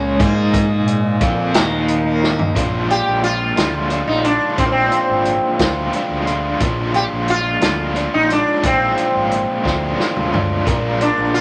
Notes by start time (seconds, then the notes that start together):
Already playing: C#2 A#2 C#3 F3 G#3 A#3 C#4 C#5 G#5
0.16 G#2 G#3 A#3, kick, closed hi-hat
0.21 D#4 G#4 D#5
0.54 kick, closed hi-hat
0.79 A#2
0.88 closed hi-hat
1.21 F2 F3 A#3 C4 F4 D5, kick, closed hi-hat
1.42 F3
1.54 D#2 D#3 A#3 D#4 D#5 A#5, snare, closed hi-hat
1.88 closed hi-hat
2.04 A#3
2.23 snare
2.39 floor tom
2.55 A#1 A#2 F3 G#3 D4 F4, kick, closed hi-hat
2.89 G#3 D4 F4 G4, closed hi-hat
3.08 A#1
3.23 F4, closed hi-hat
3.57 D2 A#2 F3 G#3 D4 F4, snare, closed hi-hat
3.90 F3 G#3 D4 F4, closed hi-hat
4.07 A#1 D#4
4.24 G#3 D4 F4, closed hi-hat
4.57 A#1 A#2 F3 G#3 C4 D4 F4, kick, closed hi-hat
4.66 A#3
4.72 C4
4.91 G#3 D4 F4, closed hi-hat
5.09 G#1
5.25 closed hi-hat
5.59 D2 A#2 F3 G#3 D4 F4, kick, snare, closed hi-hat
5.93 F3 G#3 D4 F4, closed hi-hat
6.10 D2
6.27 G#3 D4 F4, closed hi-hat
6.60 A#1 A#2 F3 G#3 D4 F4, kick, closed hi-hat
6.94 G#3 D4 F4 G4, closed hi-hat
7.12 A#1
7.28 F4, closed hi-hat
7.61 D2 A#2 F3 G#3 D4 F4, snare, closed hi-hat
7.95 F3 G#3 D4 F4, closed hi-hat
8.14 A#1 D#4
8.29 G#3 D4 F4, closed hi-hat
8.63 A#1 A#2 F3 G#3 C4 D4 F4, kick, closed hi-hat
8.97 G#3 D4 F4, closed hi-hat
9.15 G#1
9.31 closed hi-hat
9.64 D2 A#2 F3 G#3 D4 F4, kick, snare
9.98 F3 G#3 D4 F4, snare
10.16 D2, mid tom
10.32 G#3 D4 F4, floor tom
10.65 A#1 A#2 F3 G#3 D4 F4 A#4 D5 A#5, kick, closed hi-hat
10.99 G#3 D4 F4, closed hi-hat
11.17 A#1
11.34 F4, closed hi-hat